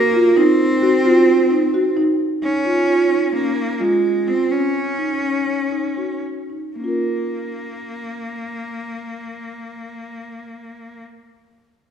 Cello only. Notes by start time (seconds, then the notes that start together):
Already playing: A#3
0.37 C4
2.43 C#4
3.34 A#3
3.80 G#3
4.27 C4
4.51 C#4
6.76 A#3